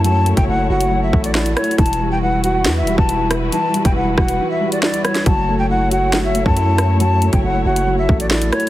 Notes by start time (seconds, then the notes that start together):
Already playing: F#2 F#3 A3 E4 F#4 C#5
0.04 F#3 A5, closed hi-hat
0.26 A3, closed hi-hat
0.37 F#1 G5, kick, closed hi-hat
0.48 F#1 E4 F#5
0.70 F#1 F#4 F#5
0.81 closed hi-hat
0.91 F#3
1.03 E5
1.13 A1 A3, kick
1.24 D5, closed hi-hat
1.35 E4 D5, snare
1.46 closed hi-hat
1.57 E4 C#5, cross-stick, closed hi-hat
1.64 closed hi-hat
1.71 closed hi-hat
1.78 E1 E3 G3 E4 B4 A5, kick, closed hi-hat
1.86 closed hi-hat
1.93 closed hi-hat
2.00 G3
2.11 G5
2.22 E4 F#5
2.44 F#4 F#5, closed hi-hat
2.65 E2 E3, snare, closed hi-hat
2.76 E5
2.82 E1
2.87 G3, closed hi-hat
2.98 E1 A5, kick
3.09 E4, closed hi-hat
3.30 E4, cross-stick, closed hi-hat
3.52 E3 A5, closed hi-hat
3.74 G3, closed hi-hat
3.85 E1 G5, kick, closed hi-hat
3.96 E1 E4 F#5
4.17 E1 F#4 F#5, kick, cross-stick
4.28 closed hi-hat
4.40 E3
4.50 E5
4.61 G3
4.72 D5, closed hi-hat
4.83 E4 D5, snare
4.94 closed hi-hat
5.05 E4 C#5, cross-stick, closed hi-hat
5.15 snare, closed hi-hat
5.26 F#1 F#3 A3 E4 C#5 A5, kick, closed hi-hat
5.49 A3
5.59 G5
5.70 E4 F#5
5.91 F#4 F#5, closed hi-hat
6.13 G1 F#3, snare, closed hi-hat
6.24 E5
6.30 F#1
6.35 A3, closed hi-hat
6.46 F#2 A5, kick
6.57 E4, closed hi-hat
6.78 E4, cross-stick, closed hi-hat
7.00 F#3 A5, closed hi-hat
7.22 A3, closed hi-hat
7.33 F#1 G5, kick, closed hi-hat
7.44 F#1 E4 F#5
7.65 F#1 F#4 F#5
7.76 closed hi-hat
7.87 F#3
7.98 E5
8.09 A1 A3, kick
8.20 D5, closed hi-hat
8.31 E4 D5, snare
8.42 closed hi-hat
8.52 E4 C#5, cross-stick, closed hi-hat
8.60 closed hi-hat